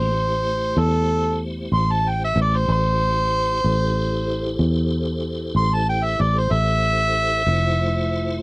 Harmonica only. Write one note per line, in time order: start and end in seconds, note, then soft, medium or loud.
0.00 0.81 C5 medium
0.79 1.40 A4 loud
1.74 1.93 C6 loud
1.92 2.11 A5 medium
2.09 2.22 G5 medium
2.24 2.37 E5 medium
2.41 2.58 D5 medium
2.56 2.69 C5 medium
2.72 4.58 C5 loud
5.57 5.75 C6 loud
5.74 5.88 A5 medium
5.89 6.05 G5 medium
6.04 6.23 E5 medium
6.21 6.40 D5 medium
6.38 6.53 C5 medium
6.52 8.39 E5 loud